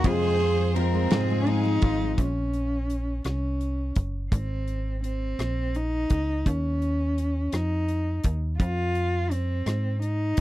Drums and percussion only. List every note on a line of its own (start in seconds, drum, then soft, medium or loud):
0.04 kick loud
0.04 ride medium
0.40 ride soft
0.76 ride medium
1.10 snare loud
1.10 ride medium
1.47 ride soft
1.82 kick medium
1.82 ride medium
2.18 kick medium
2.18 closed hi-hat medium
2.53 closed hi-hat soft
2.90 closed hi-hat soft
3.24 cross-stick medium
3.24 closed hi-hat soft
3.61 closed hi-hat soft
3.96 kick medium
3.96 closed hi-hat medium
4.32 kick medium
4.32 closed hi-hat medium
4.68 closed hi-hat soft
5.04 closed hi-hat medium
5.39 cross-stick medium
5.39 closed hi-hat soft
5.75 closed hi-hat soft
6.10 kick medium
6.10 closed hi-hat medium
6.46 kick medium
6.46 closed hi-hat medium
6.82 closed hi-hat soft
7.18 closed hi-hat medium
7.52 cross-stick medium
7.52 closed hi-hat medium
7.88 closed hi-hat soft
8.24 kick medium
8.24 closed hi-hat medium
8.60 kick medium
8.60 closed hi-hat medium
8.95 closed hi-hat soft
9.31 closed hi-hat medium
9.66 cross-stick medium
9.66 closed hi-hat medium
10.02 closed hi-hat soft
10.37 closed hi-hat medium